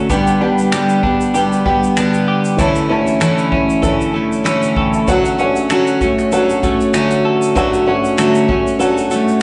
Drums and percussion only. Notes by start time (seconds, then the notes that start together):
0.10 kick, shaker
0.27 shaker
0.58 shaker
0.72 finger snap, shaker
0.89 shaker
1.03 kick
1.21 shaker
1.35 shaker
1.52 shaker
1.66 kick
1.84 shaker
1.97 finger snap, shaker
2.14 shaker
2.45 shaker
2.59 kick, shaker
2.76 shaker
3.07 shaker
3.21 finger snap, shaker
3.38 shaker
3.52 kick
3.70 shaker
3.83 kick, shaker
4.01 shaker
4.32 shaker
4.46 finger snap, shaker
4.63 shaker
4.76 kick
4.94 shaker
5.08 kick, shaker
5.25 shaker
5.39 shaker
5.56 shaker
5.70 finger snap, shaker
5.87 shaker
6.01 kick, shaker
6.19 finger snap, shaker
6.32 shaker
6.49 shaker
6.63 kick, shaker
6.81 shaker
6.94 finger snap, shaker
7.11 shaker
7.42 shaker
7.56 kick, shaker
7.74 shaker
8.04 shaker
8.18 finger snap, shaker
8.35 shaker
8.49 kick
8.67 shaker
8.80 shaker
8.97 shaker
9.11 shaker
9.28 shaker